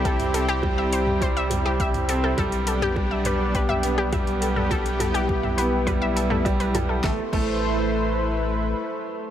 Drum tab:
CC |----------------|----------------|----------------|--x-------------|
HH |xxx---x-x-x-xxx-|xxx---x-x-x-xxx-|xxxx--x-x-x-xxx-|----------------|
SD |----------------|----------------|----------------|o---------------|
T2 |-o--o--o--o--o--|o--o--o--o--o--o|--o--o--o--o--o-|----------------|
BD |o---o---o---o---|o---o---o---o---|o---o---o---o---|o-o-------------|